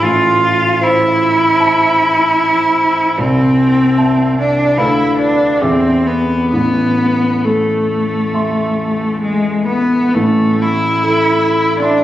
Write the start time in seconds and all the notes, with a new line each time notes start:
0.02 A1 F4
0.80 E4 C5
1.60 E5 A5
3.18 C2 C4
3.98 E5 A5
4.39 D4
4.77 D2 E4 B4 F5 B5
5.18 D4
5.62 E2 C4 G#4 E5 D6
6.06 B3
6.52 A1 B3
7.44 A3 A4
8.34 E5 C6
9.21 G#3
9.66 B3
10.14 A1 A3
10.62 E4
11.03 A4
11.81 D4 E5 C6